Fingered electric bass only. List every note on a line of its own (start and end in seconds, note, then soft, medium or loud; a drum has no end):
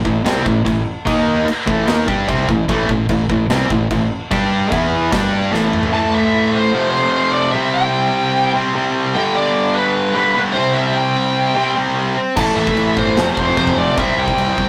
0.05 0.24 A1 medium
0.25 0.44 C2 loud
0.46 0.64 A1 medium
0.66 0.85 A1 medium
1.07 1.44 D#2 loud
1.45 muted fingered electric bass stroke soft
1.67 1.86 A1 medium
1.86 2.06 D#2 loud
2.08 2.27 G2 medium
2.28 2.47 C2 loud
2.49 2.67 A1 medium
2.69 2.87 A1 loud
2.89 3.08 A1 medium
3.09 3.28 A1 medium
3.29 3.48 A1 medium
3.49 3.68 C2 loud
3.70 3.89 A1 medium
3.91 4.09 A1 medium
4.31 4.69 G2 loud
4.72 5.09 E2 loud
5.12 5.50 G2 loud
5.52 5.90 A1 loud
12.37 12.50 A1 medium
12.57 12.69 A1 medium
12.76 12.89 A1 medium
12.97 13.10 G1 medium
13.17 13.30 F1 loud
13.37 13.50 F1 medium
13.57 13.70 F2 medium
13.76 13.89 F1 medium
13.97 14.10 C2 loud
14.17 14.30 C2 medium
14.37 14.50 C2 loud
14.57 14.69 C2 medium